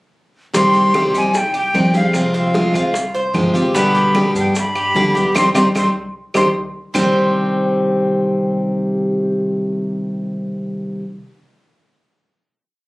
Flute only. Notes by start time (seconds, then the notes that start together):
0.56 C6
1.17 G#5
1.37 G5
1.58 G5
1.96 F5
2.37 F5
3.76 B5
4.39 G5
4.59 B5
5.38 C6
5.57 C6
5.77 C6
6.37 C6